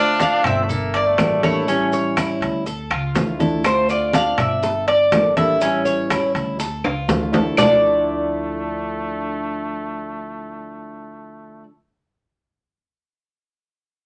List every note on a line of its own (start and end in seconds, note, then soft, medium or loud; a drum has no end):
0.00 0.68 D3 medium
0.00 0.69 A3 medium
0.00 0.69 C4 medium
0.00 0.46 D4 loud
0.00 0.20 F4 medium
0.00 0.69 F4 medium
0.00 0.22 D5 loud
0.20 0.68 D4 medium
0.20 0.46 F5 loud
0.20 high conga medium
0.20 high timbale medium
0.20 low timbale medium
0.20 maracas medium
0.44 1.14 G1 loud
0.44 0.64 C4 loud
0.44 0.92 E5 loud
0.44 high conga soft
0.44 low conga medium
0.44 high timbale loud
0.44 claves medium
0.44 maracas soft
0.63 0.70 A3 medium
0.69 1.08 A#3 medium
0.69 0.93 A4 medium
0.69 muted steel-string acoustic guitar stroke medium
0.69 high conga soft
0.69 low conga medium
0.69 maracas medium
0.94 1.42 D5 medium
0.94 1.41 D5 medium
0.94 high conga soft
0.94 high timbale medium
1.07 2.05 A3 medium
1.18 2.35 A1 medium
1.18 1.42 G3 medium
1.18 1.42 A#3 medium
1.18 1.42 D4 medium
1.18 1.41 A4 medium
1.18 high conga medium
1.18 high timbale medium
1.18 low timbale medium
1.18 claves medium
1.18 maracas medium
1.43 1.67 G3 medium
1.43 1.67 A#3 medium
1.43 1.67 D4 medium
1.43 1.67 E4 medium
1.43 1.67 A4 medium
1.43 1.92 C#5 medium
1.43 high conga medium
1.43 high timbale medium
1.43 maracas soft
1.67 2.65 E3 medium
1.67 2.65 G3 medium
1.67 2.16 C#4 medium
1.67 2.66 C#4 medium
1.67 2.66 E4 medium
1.67 high conga soft
1.67 maracas medium
1.93 2.39 C#5 medium
1.93 high conga soft
1.93 maracas medium
2.17 2.65 E4 medium
2.17 high conga medium
2.17 high timbale loud
2.17 low timbale medium
2.17 claves medium
2.17 maracas medium
2.41 2.87 D2 medium
2.41 high conga soft
2.41 high timbale medium
2.41 maracas soft
2.66 2.90 A4 medium
2.66 muted steel-string acoustic guitar stroke medium
2.66 high conga soft
2.66 maracas medium
2.90 3.13 C#2 medium
2.90 3.38 F4 medium
2.90 high conga soft
2.90 high timbale loud
2.90 claves medium
3.15 4.31 D2 medium
3.15 3.39 F3 medium
3.15 3.39 A3 medium
3.15 3.39 D4 medium
3.15 3.38 E4 medium
3.15 high conga medium
3.15 high timbale medium
3.15 low timbale medium
3.15 maracas medium
3.39 3.64 F3 medium
3.39 3.64 A3 medium
3.39 3.64 D4 medium
3.39 3.63 E4 medium
3.39 3.88 A4 medium
3.39 high conga medium
3.39 maracas soft
3.64 4.62 D3 medium
3.64 4.63 A3 medium
3.64 4.63 C4 medium
3.64 4.63 F4 medium
3.64 3.88 C5 loud
3.64 high bongo medium
3.64 high conga soft
3.64 high timbale medium
3.64 claves medium
3.64 maracas medium
3.89 4.13 F4 medium
3.89 4.15 D5 medium
3.89 high bongo soft
3.89 high conga soft
3.89 maracas medium
4.13 4.61 D4 medium
4.13 4.37 F5 loud
4.13 high bongo medium
4.13 high conga medium
4.13 high timbale medium
4.13 low timbale medium
4.13 maracas medium
4.38 5.08 G1 medium
4.38 4.85 E5 loud
4.38 high conga soft
4.38 low conga medium
4.38 high timbale loud
4.38 claves medium
4.38 maracas soft
4.62 4.87 A4 medium
4.62 muted steel-string acoustic guitar stroke medium
4.62 high bongo medium
4.62 high conga soft
4.62 maracas medium
4.87 5.35 D5 medium
4.87 5.36 D5 loud
4.87 high bongo soft
4.87 high conga soft
4.87 high timbale medium
5.11 6.28 A1 medium
5.11 5.36 G3 medium
5.11 5.36 A#3 medium
5.11 5.36 D4 soft
5.11 5.36 A4 medium
5.11 high bongo soft
5.11 low bongo medium
5.11 high conga medium
5.11 high timbale loud
5.11 low timbale medium
5.11 claves medium
5.11 maracas medium
5.37 5.60 G3 medium
5.37 5.61 A#3 medium
5.37 5.61 D4 medium
5.37 5.61 E4 medium
5.37 5.60 A4 medium
5.37 5.85 E5 loud
5.37 high bongo soft
5.37 high conga medium
5.37 high timbale medium
5.37 maracas soft
5.61 6.58 E3 medium
5.61 6.59 G3 medium
5.61 6.09 C#4 medium
5.61 6.59 C#4 medium
5.61 6.59 E4 medium
5.61 high bongo medium
5.61 high conga soft
5.61 maracas medium
5.85 6.31 C#5 medium
5.85 high bongo soft
5.85 high conga soft
5.85 maracas medium
6.10 6.58 E4 medium
6.10 high bongo medium
6.10 high conga medium
6.10 high timbale loud
6.10 low timbale medium
6.10 claves medium
6.10 maracas medium
6.35 6.81 D2 medium
6.35 high conga soft
6.35 high timbale medium
6.35 maracas soft
6.59 6.83 A4 medium
6.59 muted steel-string acoustic guitar stroke medium
6.59 high bongo medium
6.59 high conga soft
6.59 maracas medium
6.84 7.07 C#2 medium
6.84 7.32 F4 medium
6.84 high bongo soft
6.84 high conga soft
6.84 high timbale medium
6.84 claves medium
7.08 7.52 D2 medium
7.08 7.32 F3 soft
7.08 7.32 A3 medium
7.08 7.32 D4 medium
7.08 7.31 E4 medium
7.08 high bongo loud
7.08 high conga medium
7.08 low timbale medium
7.08 maracas medium
7.32 7.57 F3 medium
7.32 7.57 A3 medium
7.32 7.57 D4 medium
7.32 7.56 E4 medium
7.32 7.57 A4 medium
7.32 low bongo medium
7.32 high conga medium
7.32 low timbale loud
7.32 maracas soft
7.57 11.63 D2 medium
7.57 11.67 D3 medium
7.57 11.68 F3 medium
7.57 11.64 A3 medium
7.57 11.68 A3 medium
7.57 11.63 D4 medium
7.57 11.69 D4 medium
7.57 11.69 E4 medium
7.57 11.64 A4 medium
7.57 11.64 D5 medium
7.57 low bongo loud
7.57 low conga loud
7.57 low timbale loud
7.57 claves loud
7.57 maracas loud